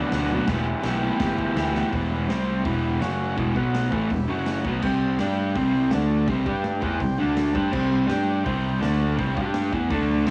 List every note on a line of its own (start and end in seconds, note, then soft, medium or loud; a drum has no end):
0.00 0.11 B2 medium
0.00 0.11 F#3 medium
0.00 0.12 B3 loud
0.00 0.12 D4 loud
0.00 0.13 F#4 loud
0.00 0.44 F#4 medium
0.00 0.45 B4 medium
0.00 0.45 D5 medium
0.12 0.37 D2 medium
0.12 0.29 B2 medium
0.12 0.30 F#3 medium
0.12 0.31 B3 medium
0.12 0.31 D4 loud
0.12 0.32 F#4 loud
0.12 snare loud
0.12 open hi-hat medium
0.31 0.47 B2 loud
0.31 0.48 F#3 loud
0.31 0.48 B3 medium
0.31 0.48 D4 medium
0.31 0.49 F#4 loud
0.46 0.73 E1 loud
0.46 0.83 E3 medium
0.46 0.84 B3 medium
0.46 0.84 E4 loud
0.46 1.89 G4 medium
0.46 0.85 G4 loud
0.46 1.90 B4 medium
0.46 1.90 E5 medium
0.46 kick loud
0.46 snare loud
0.46 open hi-hat medium
0.83 1.10 B1 loud
0.83 1.01 E3 medium
0.83 1.01 B3 medium
0.83 1.02 E4 medium
0.83 1.02 G4 loud
0.83 snare loud
0.83 open hi-hat medium
1.02 1.18 E3 medium
1.02 1.19 B3 medium
1.02 1.20 E4 medium
1.02 1.20 G4 loud
1.19 1.45 G1 medium
1.19 1.55 E3 loud
1.19 1.55 B3 loud
1.19 1.56 E4 loud
1.19 1.57 G4 loud
1.19 kick loud
1.19 snare loud
1.19 open hi-hat medium
1.38 kick medium
1.55 1.81 D2 medium
1.55 1.72 E3 medium
1.55 1.74 B3 medium
1.55 1.74 E4 loud
1.55 1.74 G4 loud
1.55 snare loud
1.55 open hi-hat medium
1.74 1.91 E3 loud
1.74 1.92 B3 medium
1.74 1.92 E4 medium
1.74 1.92 G4 loud
1.74 snare medium
1.92 2.26 E1 medium
1.92 2.29 E2 medium
1.92 2.29 B2 loud
1.92 2.29 E3 loud
1.92 2.26 G4 medium
1.92 2.29 B4 medium
1.92 2.29 E5 medium
1.92 kick loud
1.92 open hi-hat medium
2.27 2.62 C2 loud
2.27 2.65 C3 medium
2.27 2.64 G3 medium
2.27 2.65 C4 loud
2.27 2.64 G4 medium
2.27 2.65 C5 medium
2.27 2.65 G5 medium
2.27 snare loud
2.27 open hi-hat medium
2.64 2.99 E1 medium
2.64 3.00 E2 medium
2.64 3.00 B2 medium
2.64 3.01 E3 loud
2.64 3.01 G4 medium
2.64 3.02 B4 medium
2.64 3.02 E5 medium
2.64 kick loud
2.64 open hi-hat medium
3.00 3.35 F#1 loud
3.00 3.36 F#2 medium
3.00 3.37 C#3 medium
3.00 3.37 F#3 loud
3.00 3.37 F#4 medium
3.00 3.37 C#5 medium
3.00 3.37 F#5 medium
3.00 snare loud
3.00 open hi-hat medium
3.36 3.55 E1 medium
3.36 3.54 E2 medium
3.36 3.54 B2 loud
3.36 3.55 E3 medium
3.36 kick loud
3.36 open hi-hat medium
3.55 3.89 B1 loud
3.55 3.91 B2 medium
3.55 3.92 F#3 medium
3.55 3.92 B3 loud
3.55 3.92 F#4 medium
3.55 3.91 B4 medium
3.55 3.93 F#5 medium
3.55 kick loud
3.75 snare loud
3.75 open hi-hat medium
3.91 4.09 A1 medium
3.91 4.09 A2 medium
3.91 4.09 E3 loud
3.91 4.10 A3 loud
3.91 4.28 G4 medium
3.91 4.28 B4 medium
3.91 4.28 E5 medium
3.91 kick loud
4.10 4.27 E1 medium
4.10 4.24 E2 medium
4.10 4.25 B2 medium
4.10 kick medium
4.10 open hi-hat medium
4.28 4.62 F#1 loud
4.28 4.64 F#2 medium
4.28 4.64 C#3 loud
4.28 4.64 F#3 loud
4.28 4.64 F#4 medium
4.28 4.65 C#5 medium
4.28 4.65 F#5 medium
4.46 snare loud
4.46 open hi-hat medium
4.65 4.81 B1 medium
4.65 4.82 B2 loud
4.65 4.82 F#3 loud
4.65 4.83 B3 loud
4.65 kick loud
4.82 5.16 C2 medium
4.82 5.18 C3 loud
4.82 5.18 G3 medium
4.82 5.19 C4 loud
4.82 5.19 G4 medium
4.82 5.19 C5 medium
4.82 5.19 G5 medium
4.82 kick loud
4.82 crash medium
5.19 5.53 G2 loud
5.19 5.54 G3 medium
5.19 5.55 D4 loud
5.19 5.55 G4 medium
5.19 5.56 D5 medium
5.19 5.55 G5 medium
5.19 snare loud
5.19 open hi-hat medium
5.55 5.89 C2 loud
5.55 5.92 C3 medium
5.55 5.93 G3 loud
5.55 5.93 C4 loud
5.55 5.92 G4 medium
5.55 5.91 C5 medium
5.55 5.92 G5 medium
5.55 kick loud
5.55 open hi-hat medium
5.91 6.25 D2 loud
5.91 6.27 D3 medium
5.91 6.28 A3 loud
5.91 6.28 D4 loud
5.91 6.28 A4 medium
5.91 6.28 D5 medium
5.91 6.28 A5 medium
5.91 snare loud
5.91 open hi-hat medium
6.27 6.44 C2 medium
6.27 6.45 C3 medium
6.27 6.44 G3 medium
6.27 6.45 C4 loud
6.27 kick loud
6.27 open hi-hat medium
6.45 6.80 G2 medium
6.45 6.81 G3 medium
6.45 6.81 D4 medium
6.45 6.82 G4 loud
6.45 6.80 G4 medium
6.45 6.83 D5 medium
6.45 6.81 G5 medium
6.45 kick loud
6.64 snare loud
6.64 open hi-hat medium
6.81 6.99 E2 medium
6.81 6.99 E3 loud
6.81 6.99 B3 loud
6.81 7.00 E4 loud
6.81 7.18 G4 medium
6.81 7.18 C5 medium
6.81 7.19 G5 medium
6.81 kick loud
7.00 7.17 C2 medium
7.00 7.14 C3 medium
7.00 7.15 G3 medium
7.00 kick medium
7.00 open hi-hat medium
7.18 7.53 D2 loud
7.18 7.54 D3 medium
7.18 7.53 A3 medium
7.18 7.53 D4 loud
7.18 7.55 A4 medium
7.18 7.56 D5 medium
7.18 7.56 A5 medium
7.37 snare loud
7.37 open hi-hat medium
7.54 7.72 G2 medium
7.54 7.71 G3 loud
7.54 7.72 D4 loud
7.54 8.08 G4 medium
7.54 7.73 G4 loud
7.54 8.09 C5 medium
7.54 8.09 G5 medium
7.54 kick loud
7.72 8.07 C2 medium
7.72 8.08 C3 medium
7.72 8.06 G3 loud
7.72 8.07 C4 loud
7.72 kick loud
7.72 crash loud
8.07 8.43 G2 loud
8.07 8.44 G3 medium
8.07 8.44 D4 loud
8.07 8.44 G4 loud
8.07 8.43 G4 medium
8.07 8.45 D5 medium
8.07 8.44 G5 medium
8.07 snare loud
8.07 open hi-hat medium
8.44 8.80 C2 loud
8.44 8.80 C3 loud
8.44 8.81 G3 loud
8.44 8.81 C4 loud
8.44 8.81 G4 medium
8.44 8.81 C5 medium
8.44 8.82 G5 medium
8.44 kick loud
8.44 open hi-hat medium
8.81 9.17 D2 loud
8.81 9.17 D3 loud
8.81 9.18 A3 medium
8.81 9.18 D4 loud
8.81 9.18 A4 medium
8.81 9.18 D5 medium
8.81 9.18 A5 medium
8.81 snare loud
8.81 open hi-hat medium
9.18 9.35 C2 medium
9.18 9.36 C3 loud
9.18 9.35 G3 medium
9.18 9.37 C4 loud
9.18 kick loud
9.18 open hi-hat medium
9.36 9.70 G2 medium
9.36 9.72 G3 medium
9.36 9.72 D4 medium
9.36 9.72 G4 medium
9.36 9.73 G4 medium
9.36 9.73 D5 medium
9.36 9.73 G5 medium
9.36 kick loud
9.54 snare loud
9.54 open hi-hat medium
9.72 9.89 E2 medium
9.72 9.90 E3 loud
9.72 9.90 B3 loud
9.72 9.90 E4 loud
9.72 kick loud
9.90 10.24 D2 loud
9.90 10.26 D3 medium
9.90 10.27 A3 loud
9.90 10.27 D4 loud
9.90 10.27 A4 medium
9.90 10.27 D5 medium
9.90 10.27 A5 medium
9.90 kick loud
9.90 open hi-hat medium
10.26 10.31 C2 loud
10.26 10.31 C3 medium
10.26 10.31 G3 loud
10.26 10.31 G4 medium
10.26 10.31 C5 medium
10.26 snare loud
10.26 open hi-hat medium